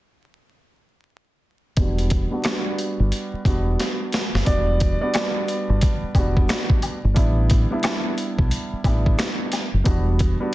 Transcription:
1.77 fingered electric bass E1, grand piano G3 B3 D4, kick, closed hi-hat
1.81 grand piano F#4
1.99 closed hi-hat
2.10 kick, closed hi-hat
2.31 grand piano G3 B3 D4 F#4
2.44 grand piano G3 B3 D4 F#4, cross-stick, snare, closed hi-hat
2.78 closed hi-hat
3.00 fingered electric bass G1
3.12 closed hi-hat
3.33 muted fingered electric bass stroke
3.45 fingered electric bass E1, grand piano G3 B3 D4 F#4, kick, closed hi-hat
3.80 snare, closed hi-hat
4.13 snare, closed hi-hat
4.34 fingered electric bass F#1, snare
4.45 fingered electric bass E1, grand piano G3 B3 D4 F#4, upright piano D5, kick, closed hi-hat, shaker
4.80 kick, closed hi-hat, shaker
5.01 grand piano G3 B3 D4 F#4, upright piano D5
5.14 grand piano G3 B3 D4 F#4, cross-stick, snare, closed hi-hat, high woodblock, shaker
5.48 closed hi-hat, shaker
5.69 fingered electric bass G1
5.81 kick, closed hi-hat, shaker
6.03 muted fingered electric bass stroke
6.15 fingered electric bass E1, grand piano G3 B3 D4 F#4, kick, closed hi-hat, high woodblock, shaker
6.37 kick
6.49 cross-stick, snare, closed hi-hat, shaker
6.70 kick
6.82 closed hi-hat, high woodblock, shaker
7.04 fingered electric bass G1
7.14 fingered electric bass A1, grand piano G3 B3 D4 E4, kick, closed hi-hat, shaker
7.50 kick, closed hi-hat, shaker
7.70 grand piano G3 B3 D4 E4
7.82 grand piano G3 B3 D4, cross-stick, snare, closed hi-hat, high woodblock, shaker
8.17 closed hi-hat, shaker
8.38 fingered electric bass B1, kick
8.51 closed hi-hat, shaker
8.73 muted fingered electric bass stroke
8.84 fingered electric bass A1, grand piano G3 B3 D4 E4, kick, closed hi-hat, high woodblock, shaker
9.06 kick
9.18 cross-stick, snare, closed hi-hat, shaker
9.52 snare, closed hi-hat, high woodblock, shaker
9.74 fingered electric bass F#1
9.84 fingered electric bass E1, grand piano G3 B3 D4 F#4, kick, closed hi-hat, shaker
10.19 kick, closed hi-hat, shaker
10.40 grand piano G3 B3 D4 F#4

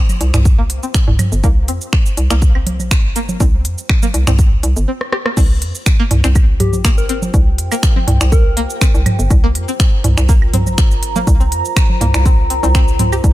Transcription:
Already playing: ambient pad F4 C5 G5
0.09 high conga, cabasa
0.21 fm bass C2, open hi-hat, cabasa
0.34 fm bass C2, finger snap, mid tom, cabasa
0.45 kick, cabasa
0.58 synth pluck A#3
0.70 open hi-hat
0.83 synth pluck C4, cabasa
0.94 finger snap, kick, cabasa
1.08 fm bass C2, mid tom
1.19 mid tom, open hi-hat, high conga, cabasa, high woodblock
1.32 fm bass G1, cabasa
1.44 fm bass C2, synth pluck A#3, kick, cabasa
1.68 fm bass F2, synth pluck C4, open hi-hat, cabasa
1.81 cabasa
1.93 finger snap, kick
2.06 cabasa
2.17 fm bass C2, open hi-hat, cabasa
2.30 fm bass C2, synth pluck A#3, finger snap, cabasa
2.42 kick, cabasa
2.55 synth pluck C4, high woodblock
2.67 open hi-hat, high conga
2.80 fm bass A#1, high conga, cabasa
2.91 finger snap, kick, cabasa
3.16 fm bass G1, synth pluck A#3, open hi-hat, cabasa
3.29 high conga, cabasa
3.40 fm bass C2, synth pluck C4, kick, cabasa
3.65 fm bass F2, open hi-hat, cabasa
3.78 cabasa
3.89 finger snap, kick, high woodblock
4.03 synth pluck A#3, high conga, cabasa
4.14 fm bass C2, open hi-hat, cabasa
4.27 fm bass C2, synth pluck C4, finger snap, mid tom, cabasa
4.39 kick, cabasa
4.63 fm bass C2, open hi-hat, cabasa
4.76 fm bass G1, cabasa
4.88 synth pluck C4
5.01 cross-stick
5.13 synth pluck G4, cross-stick
5.26 synth pluck A#3, cross-stick
5.37 fm bass C2, synth pluck C4, ambient pad F4, kick, crash, cabasa
5.49 ambient pad C5
5.61 fm bass F2, ambient pad G5, open hi-hat
5.75 cabasa
5.86 finger snap, kick, cabasa
6.00 synth pluck A#3
6.11 fm bass C2, mid tom, open hi-hat
6.24 fm bass C2, synth pluck C4, finger snap, cabasa
6.35 kick, cabasa, high woodblock
6.60 soft synth lead G4, mid tom, open hi-hat, high conga
6.73 fm bass A#1, high conga, cabasa
6.85 synth pluck A#3, finger snap, kick, cabasa
6.98 soft synth lead A#4, cabasa
7.09 fm bass G1, synth pluck C4, soft synth lead A#4, open hi-hat
7.22 high conga, cabasa
7.34 fm bass C2, kick, cabasa
7.58 fm bass F2, open hi-hat
7.72 synth pluck A#3, cabasa, high woodblock
7.83 finger snap, kick, cabasa
7.96 synth pluck C4, high conga
8.08 fm bass C2, mid tom, open hi-hat
8.21 fm bass C2, finger snap, cabasa
8.32 soft synth lead A#4, kick, cabasa
8.57 synth pluck A#3, open hi-hat
8.70 cabasa
8.81 synth pluck C4, finger snap, kick, cabasa
8.95 fm bass C2, cabasa
9.06 mid tom, open hi-hat, high conga, high woodblock
9.19 fm bass G1, cabasa
9.31 fm bass C2, kick, cabasa
9.44 synth pluck A#3
9.54 fm bass F2, ambient pad A#5, open hi-hat
9.68 synth pluck C4, cabasa
9.80 finger snap, kick, cabasa
10.04 fm bass C2, mid tom, open hi-hat
10.17 fm bass C2, finger snap, cabasa
10.29 synth pluck A#3, kick, cabasa
10.42 high woodblock
10.54 synth pluck C4, mid tom, open hi-hat, high conga
10.67 fm bass A#1, high conga, cabasa
10.78 finger snap, kick, cabasa
10.91 cabasa
11.03 fm bass G1, open hi-hat
11.16 synth pluck A#3, high conga, cabasa
11.27 fm bass C2, kick, cabasa
11.40 synth pluck C4, cabasa
11.52 fm bass F2, open hi-hat
11.65 cabasa
11.76 finger snap, kick, cabasa, high woodblock
11.90 high conga
12.01 fm bass C2, synth pluck A#3, mid tom, open hi-hat
12.14 fm bass C2, finger snap, cabasa
12.26 synth pluck C4, kick, cabasa
12.50 synth pluck C4, open hi-hat
12.63 fm bass C2, synth pluck C4, cabasa
12.75 synth pluck C4, finger snap, kick, cabasa
12.88 cabasa
12.99 synth pluck C4, mid tom, open hi-hat, high conga
13.12 synth pluck G4, cabasa, high woodblock
13.24 fm bass C2, kick, cabasa

